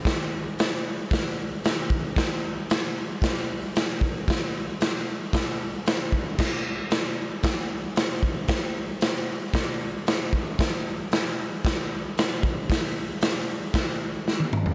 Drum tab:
CC |----------------|----------------|----------------|x---------------|
HH |o---o---o---o---|o---o---o---o---|o---o---o---o---|----o---o---o---|
SD |o---o---o---o---|o---o---o---o---|o---o---o---o---|o---o---o---o---|
T1 |----------------|----------------|----------------|----------------|
T2 |----------------|----------------|----------------|----------------|
FT |----------------|----------------|----------------|----------------|
BD |o-------o-----o-|o-------o-----o-|o-------o-----o-|o-------o-----o-|

CC |----------------|----------------|----------------|
HH |o---o---o---o---|o---o---o---o---|o---o---o-------|
SD |o---o---o---o---|o---o---o---o---|o---o---o---o---|
T1 |----------------|----------------|-------------o--|
T2 |----------------|----------------|--------------o-|
FT |----------------|----------------|---------------o|
BD |o-------o-----o-|o-------o-----o-|o-------o-------|